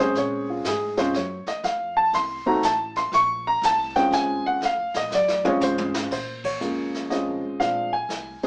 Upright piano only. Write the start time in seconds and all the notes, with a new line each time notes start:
0.00 G#3 C4 C#4 G#4 C5
0.18 C#5
0.50 F4
0.67 G#4
0.97 G#3 C4 C#4 F4 C5
1.16 C#5
1.48 D#5
1.65 F5
1.97 A5
2.15 C6
2.46 A3 C4 D#4 F#4 A#5
2.65 A5
2.97 C6
3.14 C#6
3.47 A#5
3.65 A5
3.96 G#3 C4 C#4 F4 G5
4.13 G#5
4.46 F#5
4.65 F5
4.97 D#5
5.15 D5
5.45 G#3 C4 C#4 F4 C#5
5.63 C5
6.12 C5
6.45 C#5
6.61 G#3 A#3 C#4 F4
7.10 G#3 C4 C#4 F4 D#5
7.60 G#3 C4 D4 F4 F5
7.93 G#5
8.43 G#3 C4 D4